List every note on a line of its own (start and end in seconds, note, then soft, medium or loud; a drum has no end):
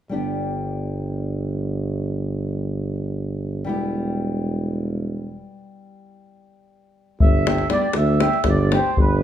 0.09 3.62 G1 medium
0.09 3.62 G3 soft
0.09 3.63 B3 soft
0.09 3.63 D4 soft
0.09 3.64 G4 medium
3.64 5.40 E1 medium
3.64 7.16 G3 medium
3.64 7.17 B3 soft
3.64 7.18 E4 medium
3.69 7.19 G4 medium
7.20 7.65 G1 medium
7.20 7.68 E5 medium
7.20 davul low medium
7.46 7.62 G3 medium
7.46 7.62 B3 soft
7.46 7.62 D4 soft
7.46 7.63 G4 medium
7.46 davul high medium
7.58 davul high soft
7.70 7.85 G3 medium
7.70 7.86 B3 medium
7.70 7.86 D4 medium
7.70 7.86 G4 medium
7.70 7.96 D5 medium
7.70 davul high medium
7.93 8.26 D2 medium
7.93 8.49 E5 medium
7.93 davul high medium
8.20 8.36 G3 medium
8.20 8.37 B3 soft
8.20 8.37 D4 soft
8.20 8.37 G4 medium
8.20 davul high medium
8.33 davul high soft
8.44 8.76 G1 loud
8.44 davul high medium
8.44 davul low soft
8.49 8.73 D5 medium
8.72 8.89 G3 medium
8.72 8.88 B3 medium
8.72 8.89 D4 medium
8.72 8.89 G4 medium
8.72 8.99 C5 medium
8.72 davul high medium
8.97 9.23 G1 medium
8.97 9.23 B4 medium
8.97 davul low medium